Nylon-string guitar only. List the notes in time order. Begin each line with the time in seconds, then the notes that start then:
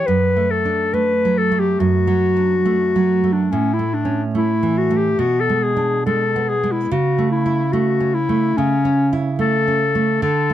0.08 F#2
0.36 A3
0.65 D4
0.94 A3
1.25 F#3
1.52 A3
1.80 F#2
2.07 F#3
2.36 D4
2.66 A3
2.96 F#3
3.24 A3
3.53 A2
3.79 A3
4.05 C#4
4.35 A3
4.63 E3
4.91 A3
5.19 B2
5.49 G#3
5.77 D4
6.07 G#3
6.36 B3
6.63 G#3
6.91 C#3
7.18 A3
7.46 E4
7.73 A3
8.00 C#4
8.29 A3
8.58 C#3
8.85 C#4
9.13 E4
9.39 A3
9.68 C#4
9.95 A3
10.22 D3
10.50 A3